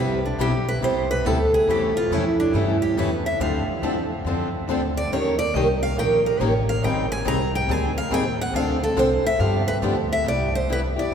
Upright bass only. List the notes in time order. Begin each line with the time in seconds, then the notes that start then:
Already playing: C2
0.39 B1
0.82 C2
1.25 D2
1.67 E2
2.11 F2
2.54 G2
2.97 E2
3.40 D2
3.67 muted upright bass stroke
3.82 E2
4.25 F2
4.68 D2
5.11 D#2
5.54 C2
5.97 A#1
6.40 A1
6.82 G#1
7.25 C2
7.68 D2
8.10 D#2
8.54 D2
8.96 C2
9.23 muted upright bass stroke
9.39 G2
9.82 D2
10.25 C2
11.11 G2